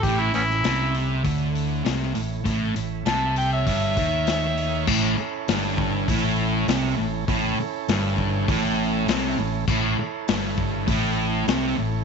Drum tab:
CC |----------------|----------------|x---------------|----------------|
HH |o-o-o-o-o-o-o-o-|o-o-o-o-o-o-o-o-|----o---o---o---|o---o---o---o---|
SD |---oo-------oo--|----o-------o---|----o-------o---|----o-------o---|
BD |o-------o-------|o-------o-o-----|o-----o-o-------|o-----o-o-------|

CC |x---------------|
HH |----o---o---o---|
SD |----o-------o---|
BD |o-----o-o-------|